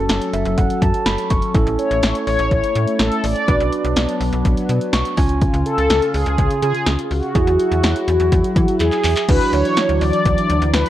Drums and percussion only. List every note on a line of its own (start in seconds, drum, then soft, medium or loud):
0.09 snare loud
0.09 closed hi-hat medium
0.22 closed hi-hat medium
0.34 closed hi-hat medium
0.45 closed hi-hat soft
0.58 kick medium
0.58 closed hi-hat medium
0.70 closed hi-hat medium
0.82 kick medium
0.82 closed hi-hat medium
0.94 closed hi-hat medium
1.06 snare loud
1.06 closed hi-hat medium
1.18 closed hi-hat medium
1.30 kick medium
1.30 closed hi-hat medium
1.42 closed hi-hat soft
1.54 kick loud
1.54 closed hi-hat medium
1.67 closed hi-hat soft
1.79 closed hi-hat medium
1.91 closed hi-hat medium
2.03 snare loud
2.03 closed hi-hat medium
2.15 closed hi-hat medium
2.27 open hi-hat medium
2.39 closed hi-hat soft
2.51 kick medium
2.51 closed hi-hat medium
2.64 closed hi-hat medium
2.75 closed hi-hat medium
2.88 closed hi-hat medium
2.99 snare loud
2.99 closed hi-hat medium
3.12 closed hi-hat medium
3.24 open hi-hat medium
3.36 closed hi-hat soft
3.48 kick loud
3.48 closed hi-hat medium
3.60 closed hi-hat soft
3.72 closed hi-hat medium
3.85 closed hi-hat medium
3.96 snare loud
3.96 closed hi-hat medium
4.09 closed hi-hat medium
4.21 open hi-hat medium
4.33 closed hi-hat medium
4.45 kick medium
4.45 closed hi-hat medium
4.57 closed hi-hat medium
4.69 closed hi-hat medium
4.81 closed hi-hat medium
4.93 snare loud
4.93 closed hi-hat medium
5.05 closed hi-hat medium
5.17 kick medium
5.17 open hi-hat medium
5.29 closed hi-hat soft
5.42 kick loud
5.42 closed hi-hat medium
5.54 closed hi-hat soft
5.66 closed hi-hat medium
5.78 closed hi-hat medium
5.90 snare loud
5.90 closed hi-hat medium
6.02 closed hi-hat medium
6.14 open hi-hat medium
6.26 closed hi-hat medium
6.38 kick medium
6.38 closed hi-hat medium
6.51 closed hi-hat medium
6.62 closed hi-hat medium
6.75 closed hi-hat medium
6.86 snare loud
6.86 closed hi-hat medium
6.99 closed hi-hat medium
7.11 open hi-hat medium
7.23 closed hi-hat soft
7.35 kick loud
7.35 closed hi-hat medium
7.47 closed hi-hat soft
7.59 closed hi-hat medium
7.72 closed hi-hat medium
7.83 snare loud
7.83 closed hi-hat medium
7.96 closed hi-hat medium
8.08 closed hi-hat medium
8.20 closed hi-hat soft
8.32 kick medium
8.32 closed hi-hat medium
8.44 closed hi-hat medium
8.56 kick loud
8.56 closed hi-hat medium
8.68 closed hi-hat medium
8.80 clap medium
8.80 closed hi-hat medium
8.92 clap medium
8.92 closed hi-hat medium
9.04 clap medium
9.04 open hi-hat medium
9.16 clap medium
9.16 closed hi-hat soft
9.29 kick loud
9.29 closed hi-hat medium
9.29 crash loud
9.41 closed hi-hat soft
9.53 closed hi-hat medium
9.65 closed hi-hat medium
9.77 snare loud
9.77 closed hi-hat medium
9.89 closed hi-hat medium
10.01 open hi-hat medium
10.13 closed hi-hat medium
10.26 kick medium
10.26 closed hi-hat medium
10.38 closed hi-hat medium
10.50 closed hi-hat medium
10.62 closed hi-hat medium
10.74 snare loud
10.74 closed hi-hat medium
10.86 closed hi-hat medium